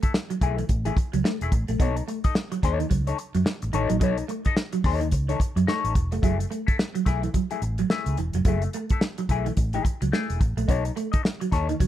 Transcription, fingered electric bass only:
0.03 muted fingered electric bass stroke soft
0.41 0.62 B1 medium
0.69 0.90 A1 loud
1.14 1.22 C#2 medium
1.41 1.49 E1 medium
1.52 1.64 A1 loud
1.69 1.77 A#1 medium
1.80 2.00 B1 loud
2.25 muted fingered electric bass stroke soft
2.63 2.83 D#2 medium
2.91 3.11 C#2 medium
3.35 3.43 F#2 medium
3.63 3.71 A1 medium
3.74 3.86 A1 loud
3.91 4.01 A#1 medium
4.01 4.22 B1 loud
4.46 muted fingered electric bass stroke soft
4.84 5.14 D#2 medium
5.12 5.33 C#2 loud
5.56 5.64 F#2 medium
5.84 5.93 A1 medium
5.95 6.12 E1 medium
6.12 6.20 F1 medium
6.23 6.44 F#1 loud
6.68 muted fingered electric bass stroke soft
7.06 7.27 B1 medium
7.62 7.83 A1 medium
8.06 8.15 C#2 medium
8.18 8.30 E1 medium
8.34 8.42 F1 medium
8.45 8.66 F#1 loud
8.91 muted fingered electric bass stroke soft
9.29 9.50 B1 medium
9.57 9.78 A1 loud
10.02 10.10 C#2 medium
10.30 10.38 E1 medium
10.41 10.53 A1 loud
10.57 10.65 A#1 medium
10.69 10.89 B1 loud
11.14 muted fingered electric bass stroke soft
11.52 11.73 D#2 medium
11.80 11.87 C#2 medium

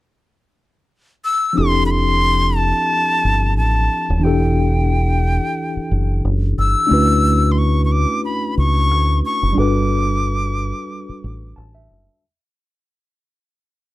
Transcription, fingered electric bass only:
1.58 2.71 F1 medium
3.25 3.58 G1 medium
3.58 3.87 A1 medium
4.10 4.24 D#1 medium
4.24 5.38 E1 medium
5.77 muted fingered electric bass stroke soft
5.91 6.21 F#1 medium
6.25 6.54 F#1 medium
6.58 6.74 G1 medium
6.91 8.05 D2 medium
8.58 8.91 C#2 medium
8.91 9.21 D2 medium
9.43 9.56 F#1 medium
9.57 10.71 G1 medium
11.09 muted fingered electric bass stroke soft
11.24 11.54 A1 medium
11.58 11.87 A1 medium
11.91 12.07 F#1 medium

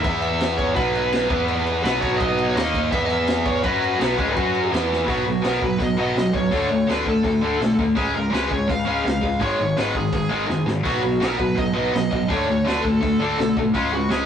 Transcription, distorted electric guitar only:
0.02 0.75 E3 loud
0.02 0.75 B3 loud
0.02 0.75 E4 loud
0.75 1.29 B2 loud
0.75 1.29 F#3 loud
0.75 1.28 B3 loud
1.29 1.83 E3 medium
1.29 1.83 B3 loud
1.29 1.84 E4 loud
1.83 2.18 B2 loud
1.83 2.20 F#3 loud
1.83 2.20 B3 loud
2.20 2.55 B2 loud
2.20 2.56 F#3 loud
2.20 2.56 B3 loud
2.56 2.91 D#3 loud
2.56 2.92 A#3 loud
2.56 2.92 D#4 loud
2.92 3.63 E3 loud
2.92 3.64 B3 loud
2.92 3.64 E4 loud
3.64 3.98 F#3 loud
3.64 3.99 C#4 loud
3.64 4.00 F#4 loud
3.99 4.17 B2 medium
3.99 4.17 F#3 medium
3.99 4.18 B3 loud
4.17 4.33 C#3 medium
4.17 4.35 G#3 medium
4.17 4.35 C#4 loud
4.33 4.70 F#3 loud
4.33 4.71 C#4 loud
4.33 4.71 F#4 loud
4.71 5.05 E3 medium
4.71 5.06 B3 loud
4.71 5.07 E4 loud
5.06 5.24 B2 medium
5.06 5.24 F#3 loud
5.06 5.25 B3 loud
5.26 5.41 B2 medium
5.26 5.42 F#3 medium
5.42 5.60 B2 medium
5.42 5.60 F#3 medium
5.42 5.61 B3 loud
5.61 5.77 B2 medium
5.61 5.78 F#3 medium
5.78 5.96 B2 medium
5.78 5.96 F#3 medium
5.97 6.15 B2 medium
5.97 6.15 F#3 medium
5.97 6.15 B3 loud
6.16 6.32 B2 medium
6.16 6.32 F#3 medium
6.33 6.50 B2 medium
6.33 6.50 F#3 medium
6.51 6.69 D3 loud
6.51 6.69 A3 loud
6.51 6.69 D4 loud
6.70 6.86 D3 medium
6.70 6.87 A3 medium
6.87 7.05 D3 medium
6.87 7.06 A3 loud
6.87 7.06 D4 loud
7.07 7.22 D3 medium
7.07 7.23 A3 medium
7.24 7.40 D3 medium
7.24 7.41 A3 medium
7.42 7.59 D3 medium
7.42 7.60 A3 medium
7.42 7.60 D4 medium
7.61 7.77 D3 medium
7.61 7.77 A3 medium
7.79 7.95 D3 medium
7.79 7.96 A3 medium
7.95 8.13 C#3 loud
7.95 8.13 G#3 loud
7.95 8.14 C#4 loud
8.15 8.29 C#3 medium
8.15 8.30 G#3 medium
8.30 8.48 C#3 medium
8.30 8.48 G#3 medium
8.30 8.50 C#4 loud
8.49 8.66 C#3 medium
8.49 8.67 G#3 medium
8.68 8.84 C#3 medium
8.68 8.85 G#3 medium
8.85 9.02 C#3 medium
8.85 9.03 G#3 medium
8.85 9.04 C#4 medium
9.04 9.20 C#3 medium
9.04 9.20 G#3 medium
9.21 9.38 C#3 medium
9.21 9.39 G#3 medium
9.39 9.57 G#2 medium
9.39 9.58 D#3 loud
9.39 9.58 G#3 loud
9.60 9.76 G#2 medium
9.60 9.76 D#3 medium
9.77 9.94 G#2 medium
9.77 9.95 D#3 medium
9.77 9.95 G#3 medium
9.96 10.12 G#2 medium
9.96 10.12 D#3 medium
10.13 10.28 G#2 medium
10.13 10.29 D#3 medium
10.29 10.46 G#2 medium
10.29 10.46 D#3 loud
10.29 10.48 G#3 loud
10.47 10.65 G#2 medium
10.47 10.65 D#3 medium
10.66 10.83 G#2 medium
10.66 10.83 D#3 medium
10.83 11.01 B2 loud
10.83 11.01 F#3 loud
10.83 11.02 B3 loud
11.02 11.19 B2 medium
11.02 11.19 F#3 medium
11.20 11.35 B2 medium
11.20 11.36 F#3 medium
11.20 11.38 B3 medium
11.36 11.54 B2 medium
11.36 11.55 F#3 medium
11.55 11.73 B2 medium
11.55 11.73 F#3 medium
11.74 11.91 B2 medium
11.74 11.91 F#3 loud
11.74 11.93 B3 medium
11.92 12.09 B2 medium
11.92 12.10 F#3 medium
12.11 12.28 B2 medium
12.11 12.28 F#3 medium
12.28 12.46 D3 loud
12.28 12.46 A3 loud
12.28 12.47 D4 loud
12.47 12.63 D3 medium
12.47 12.64 A3 medium
12.64 12.82 D3 loud
12.64 12.82 A3 medium
12.64 12.83 D4 loud
12.83 13.00 D3 medium
12.83 12.99 A3 medium
13.01 13.18 D3 medium
13.01 13.18 A3 medium
13.20 13.37 D3 medium
13.20 13.37 A3 medium
13.20 13.38 D4 loud
13.38 13.55 D3 medium
13.38 13.55 A3 medium
13.57 13.73 D3 medium
13.57 13.73 A3 medium
13.74 13.90 C#3 medium
13.74 13.91 G#3 loud
13.74 13.92 C#4 loud
13.92 14.08 C#3 medium
13.92 14.08 G#3 medium
14.09 14.26 C#3 medium
14.09 14.26 G#3 loud
14.09 14.26 C#4 loud

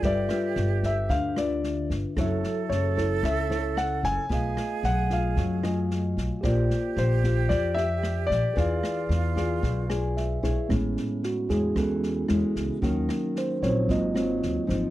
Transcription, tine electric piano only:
0.00 2.11 F4 soft
0.00 2.12 A4 soft
0.04 2.13 B4 soft
0.04 2.14 E5 soft
2.17 4.26 A4 medium
2.17 4.27 C#5 medium
2.21 4.28 E5 medium
4.30 5.61 A3 soft
4.30 5.62 D#5 soft
4.30 5.63 F5 medium
5.63 6.43 A3 soft
5.63 6.44 D#5 soft
5.63 6.44 G#5 soft
6.41 8.51 G4 medium
6.41 8.52 C5 medium
6.41 8.53 D5 medium
6.47 8.54 F4 medium
8.54 10.64 G#4 soft
8.54 10.65 B4 soft
8.58 10.66 D5 soft
8.58 10.67 F5 soft
9.89 10.14 G#5 soft
10.17 10.66 E5 medium
10.69 11.45 G#3 soft
10.69 11.45 B3 soft
10.69 11.46 C#4 soft
11.25 11.50 F#4 soft
11.50 11.76 G#4 medium
11.75 12.00 G#3 soft
11.75 12.00 B3 soft
11.75 12.00 C#4 soft
11.75 12.53 A4 soft
12.81 13.85 F#3 soft
12.81 13.85 C#4 soft
13.38 13.63 C5 medium
13.63 13.89 C#5 medium
13.88 14.90 F#3 soft
13.88 14.90 A#3 soft
13.88 14.90 C4 soft
13.88 14.90 F4 soft
13.88 14.66 D#5 medium

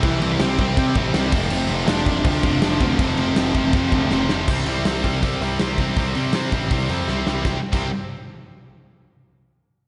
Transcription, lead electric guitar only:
0.03 0.38 E3 medium
0.03 0.40 E4 medium
0.41 0.59 C4 medium
0.41 0.58 C5 medium
0.60 0.94 C4 medium
0.60 0.94 C5 medium
1.88 2.80 D4 loud
1.88 2.77 D5 medium
2.81 4.25 C4 loud
2.81 4.25 C5 medium

